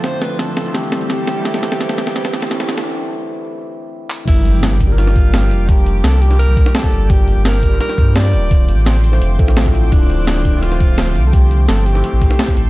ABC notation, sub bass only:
X:1
M:4/4
L:1/16
Q:1/4=170
K:Gdor
V:1 name="Sub bass" clef=bass
z16 | z16 | z16 | G,,,12 G,,,2 F,,,2- |
F,,,4 C,,4- C,, C,,2 z3 G,,,2- | G,,,3 G,,,4- G,,, z2 G,,4 D,,,2- | D,,,2 A,,,6 F,,,2 A,,,6 | D,,,12 D,,,2 C,,2- |
C,,4 G,,,4 z A,,,2 z3 A,,,2 |]